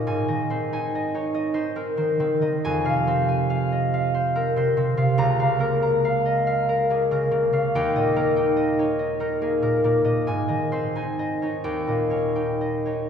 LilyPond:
<<
  \new Staff \with { instrumentName = "Harp" } { \time 6/8 \key aes \major \tempo 4. = 47 << { aes''2. | aes''2. | bes''2. | g''2. |
aes''4. g''4. | } \\ { ees''16 ees''16 c''16 aes''16 ees''16 des''16 ees''16 c''16 bes'16 c''16 ees16 ees''16 | r16 f''16 c''16 aes''16 f''16 ees''16 f''16 c''16 bes'16 c''16 c16 f''16~ | f''16 f''16 bes'16 bes''16 f''16 ees''16 f''16 bes'16 aes'16 bes'16 des16 f''16 | r16 ees''16 bes'16 g''16 ees''16 des''16 ees''16 bes'16 aes'16 bes'16 bes,16 ees''16~ |
ees''16 ees''16 c''16 aes''16 ees''16 des''8 ees''16 des''16 g''16 ees''16 des''16 | } >> }
  \new Staff \with { instrumentName = "Harp" } { \time 6/8 \key aes \major <aes, ees'>16 ees16 c'16 ees'8 ees'8 ees'16 c'16 ees16 c'16 ees16 | f,16 c16 c'4. c'16 c16 c'16 c16 | des,16 des16 bes4. bes16 des16 bes16 des16 | ees,16 bes,16 bes16 ees'8 ees'8 ees'16 bes16 bes,16 bes16 bes,16 |
aes,16 ees16 c'16 ees'8 ees'16 ees,16 bes,16 des'16 ees'8 ees'16 | }
>>